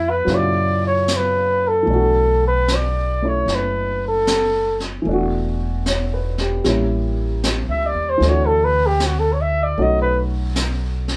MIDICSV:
0, 0, Header, 1, 5, 480
1, 0, Start_track
1, 0, Tempo, 798935
1, 1132, Time_signature, 4, 2, 24, 8
1, 3044, Tempo, 784314
1, 6778, End_track
2, 0, Start_track
2, 0, Title_t, "Flugelhorn"
2, 0, Program_c, 0, 56
2, 0, Note_on_c, 0, 64, 67
2, 56, Note_on_c, 0, 71, 68
2, 65, Note_off_c, 0, 64, 0
2, 208, Note_on_c, 0, 74, 77
2, 217, Note_off_c, 0, 71, 0
2, 519, Note_off_c, 0, 74, 0
2, 522, Note_on_c, 0, 73, 74
2, 699, Note_on_c, 0, 71, 64
2, 708, Note_off_c, 0, 73, 0
2, 1008, Note_on_c, 0, 69, 64
2, 1017, Note_off_c, 0, 71, 0
2, 1476, Note_off_c, 0, 69, 0
2, 1485, Note_on_c, 0, 71, 63
2, 1655, Note_on_c, 0, 74, 71
2, 1664, Note_off_c, 0, 71, 0
2, 1970, Note_on_c, 0, 73, 72
2, 1979, Note_off_c, 0, 74, 0
2, 2131, Note_on_c, 0, 71, 68
2, 2140, Note_off_c, 0, 73, 0
2, 2439, Note_off_c, 0, 71, 0
2, 2451, Note_on_c, 0, 69, 72
2, 2886, Note_off_c, 0, 69, 0
2, 4657, Note_on_c, 0, 76, 67
2, 4755, Note_on_c, 0, 74, 75
2, 4764, Note_off_c, 0, 76, 0
2, 4897, Note_on_c, 0, 72, 68
2, 4906, Note_off_c, 0, 74, 0
2, 5012, Note_on_c, 0, 73, 80
2, 5021, Note_off_c, 0, 72, 0
2, 5121, Note_on_c, 0, 69, 71
2, 5130, Note_off_c, 0, 73, 0
2, 5233, Note_on_c, 0, 71, 83
2, 5242, Note_off_c, 0, 69, 0
2, 5367, Note_on_c, 0, 67, 66
2, 5376, Note_off_c, 0, 71, 0
2, 5488, Note_on_c, 0, 66, 54
2, 5497, Note_off_c, 0, 67, 0
2, 5568, Note_on_c, 0, 69, 59
2, 5577, Note_off_c, 0, 66, 0
2, 5651, Note_on_c, 0, 73, 60
2, 5660, Note_off_c, 0, 69, 0
2, 5704, Note_on_c, 0, 76, 84
2, 5714, Note_off_c, 0, 73, 0
2, 5836, Note_on_c, 0, 74, 73
2, 5845, Note_off_c, 0, 76, 0
2, 5955, Note_on_c, 0, 75, 86
2, 5965, Note_off_c, 0, 74, 0
2, 6071, Note_off_c, 0, 75, 0
2, 6074, Note_on_c, 0, 71, 65
2, 6177, Note_off_c, 0, 71, 0
2, 6778, End_track
3, 0, Start_track
3, 0, Title_t, "Upright piano"
3, 0, Program_c, 1, 0
3, 0, Control_c, 1, 64, 127
3, 0, Note_on_c, 1, 59, 44
3, 0, Note_on_c, 1, 64, 42
3, 0, Note_on_c, 1, 66, 47
3, 0, Note_on_c, 1, 69, 51
3, 149, Note_on_c, 1, 54, 48
3, 160, Note_on_c, 1, 46, 42
3, 162, Note_off_c, 1, 66, 0
3, 165, Note_off_c, 1, 59, 0
3, 170, Note_off_c, 1, 64, 0
3, 172, Note_on_c, 1, 49, 47
3, 174, Control_c, 1, 64, 0
3, 175, Note_off_c, 1, 69, 0
3, 180, Note_on_c, 1, 64, 54
3, 296, Control_c, 1, 64, 127
3, 1098, Note_on_c, 1, 52, 45
3, 1119, Note_on_c, 1, 57, 44
3, 1124, Note_off_c, 1, 54, 0
3, 1129, Note_off_c, 1, 46, 0
3, 1135, Note_off_c, 1, 49, 0
3, 1139, Note_off_c, 1, 64, 0
3, 1140, Control_c, 1, 64, 0
3, 1143, Note_on_c, 1, 62, 41
3, 1163, Note_on_c, 1, 66, 51
3, 1264, Control_c, 1, 64, 127
3, 1927, Note_off_c, 1, 57, 0
3, 1936, Note_on_c, 1, 57, 35
3, 1941, Note_on_c, 1, 61, 34
3, 1952, Note_on_c, 1, 64, 41
3, 3006, Note_off_c, 1, 52, 0
3, 3015, Note_on_c, 1, 52, 50
3, 3030, Note_off_c, 1, 57, 0
3, 3039, Note_on_c, 1, 57, 45
3, 3041, Note_off_c, 1, 61, 0
3, 3047, Note_off_c, 1, 64, 0
3, 3048, Note_off_c, 1, 62, 0
3, 3048, Control_c, 1, 64, 0
3, 3058, Note_off_c, 1, 66, 0
3, 3058, Note_on_c, 1, 62, 48
3, 3081, Note_on_c, 1, 66, 55
3, 3166, Control_c, 1, 64, 127
3, 3540, Note_on_c, 1, 73, 38
3, 3700, Note_on_c, 1, 71, 39
3, 3841, Note_off_c, 1, 73, 0
3, 3864, Note_on_c, 1, 67, 44
3, 3944, Note_off_c, 1, 71, 0
3, 3991, Note_off_c, 1, 52, 0
3, 4003, Note_off_c, 1, 57, 0
3, 4009, Note_on_c, 1, 55, 44
3, 4012, Note_off_c, 1, 62, 0
3, 4014, Control_c, 1, 64, 0
3, 4018, Note_on_c, 1, 58, 41
3, 4024, Note_off_c, 1, 66, 0
3, 4028, Note_on_c, 1, 61, 39
3, 4038, Note_on_c, 1, 64, 50
3, 4106, Note_off_c, 1, 67, 0
3, 4110, Control_c, 1, 64, 127
3, 4947, Note_on_c, 1, 52, 47
3, 4966, Note_off_c, 1, 55, 0
3, 4970, Note_off_c, 1, 58, 0
3, 4972, Control_c, 1, 64, 0
3, 4973, Note_on_c, 1, 57, 44
3, 4975, Note_off_c, 1, 61, 0
3, 4980, Note_off_c, 1, 64, 0
3, 4992, Note_on_c, 1, 62, 46
3, 5018, Note_on_c, 1, 66, 46
3, 5073, Control_c, 1, 64, 127
3, 5913, Note_off_c, 1, 52, 0
3, 5917, Note_off_c, 1, 57, 0
3, 5925, Note_off_c, 1, 66, 0
3, 5926, Note_on_c, 1, 57, 45
3, 5930, Control_c, 1, 64, 0
3, 5930, Note_on_c, 1, 61, 45
3, 5931, Note_on_c, 1, 63, 42
3, 5934, Note_on_c, 1, 66, 53
3, 5936, Note_off_c, 1, 62, 0
3, 6039, Control_c, 1, 64, 127
3, 6778, Note_off_c, 1, 57, 0
3, 6778, Note_off_c, 1, 61, 0
3, 6778, Note_off_c, 1, 63, 0
3, 6778, Note_off_c, 1, 66, 0
3, 6778, End_track
4, 0, Start_track
4, 0, Title_t, "Upright bass"
4, 0, Program_c, 2, 32
4, 0, Note_on_c, 2, 41, 57
4, 140, Note_off_c, 2, 41, 0
4, 161, Note_on_c, 2, 42, 67
4, 1106, Note_off_c, 2, 42, 0
4, 1125, Note_on_c, 2, 35, 69
4, 2063, Note_off_c, 2, 35, 0
4, 2079, Note_on_c, 2, 30, 60
4, 3012, Note_off_c, 2, 30, 0
4, 3035, Note_on_c, 2, 28, 67
4, 3976, Note_off_c, 2, 28, 0
4, 4011, Note_on_c, 2, 33, 68
4, 4624, Note_off_c, 2, 33, 0
4, 4644, Note_on_c, 2, 37, 55
4, 4793, Note_off_c, 2, 37, 0
4, 4807, Note_on_c, 2, 39, 57
4, 4953, Note_off_c, 2, 39, 0
4, 4965, Note_on_c, 2, 38, 70
4, 5898, Note_off_c, 2, 38, 0
4, 5927, Note_on_c, 2, 35, 71
4, 6778, Note_off_c, 2, 35, 0
4, 6778, End_track
5, 0, Start_track
5, 0, Title_t, "Drums"
5, 165, Note_on_c, 9, 25, 32
5, 165, Note_on_c, 9, 38, 24
5, 225, Note_off_c, 9, 38, 0
5, 649, Note_on_c, 9, 38, 40
5, 649, Note_on_c, 9, 44, 43
5, 709, Note_off_c, 9, 38, 0
5, 709, Note_off_c, 9, 44, 0
5, 1131, Note_off_c, 9, 25, 0
5, 1131, Note_on_c, 9, 25, 30
5, 1610, Note_on_c, 9, 38, 36
5, 1610, Note_on_c, 9, 44, 37
5, 1670, Note_off_c, 9, 38, 0
5, 1670, Note_off_c, 9, 44, 0
5, 2089, Note_off_c, 9, 25, 0
5, 2089, Note_on_c, 9, 25, 32
5, 2089, Note_on_c, 9, 38, 25
5, 2149, Note_off_c, 9, 38, 0
5, 2566, Note_on_c, 9, 38, 41
5, 2566, Note_on_c, 9, 44, 47
5, 2626, Note_off_c, 9, 38, 0
5, 2626, Note_off_c, 9, 44, 0
5, 2885, Note_on_c, 9, 38, 23
5, 2945, Note_off_c, 9, 38, 0
5, 3045, Note_off_c, 9, 25, 0
5, 3045, Note_on_c, 9, 25, 30
5, 3529, Note_on_c, 9, 38, 34
5, 3529, Note_on_c, 9, 44, 38
5, 3590, Note_off_c, 9, 38, 0
5, 3590, Note_off_c, 9, 44, 0
5, 3848, Note_on_c, 9, 38, 25
5, 3909, Note_off_c, 9, 38, 0
5, 4008, Note_off_c, 9, 25, 0
5, 4008, Note_on_c, 9, 25, 36
5, 4008, Note_on_c, 9, 38, 25
5, 4069, Note_off_c, 9, 38, 0
5, 4493, Note_on_c, 9, 38, 41
5, 4493, Note_on_c, 9, 44, 45
5, 4555, Note_off_c, 9, 38, 0
5, 4555, Note_off_c, 9, 44, 0
5, 4973, Note_off_c, 9, 25, 0
5, 4973, Note_on_c, 9, 25, 33
5, 4973, Note_on_c, 9, 38, 26
5, 5034, Note_off_c, 9, 38, 0
5, 5451, Note_on_c, 9, 38, 38
5, 5451, Note_on_c, 9, 44, 40
5, 5512, Note_off_c, 9, 38, 0
5, 5512, Note_off_c, 9, 44, 0
5, 5928, Note_off_c, 9, 25, 0
5, 5928, Note_on_c, 9, 25, 35
5, 6404, Note_on_c, 9, 38, 43
5, 6404, Note_on_c, 9, 44, 57
5, 6465, Note_off_c, 9, 38, 0
5, 6465, Note_off_c, 9, 44, 0
5, 6723, Note_on_c, 9, 38, 25
5, 6778, Note_off_c, 9, 25, 0
5, 6778, Note_off_c, 9, 38, 0
5, 6778, End_track
0, 0, End_of_file